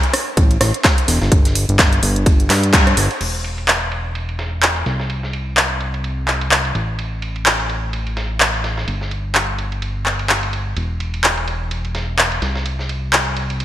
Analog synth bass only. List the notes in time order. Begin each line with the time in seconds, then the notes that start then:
0.37 A1
0.61 A1
1.08 E1
1.22 G1
1.32 G1
1.69 G1
2.03 G1
2.50 G2
2.97 G1
3.21 E1
4.86 C2
6.75 A1
8.87 G1
10.77 E1
12.42 C2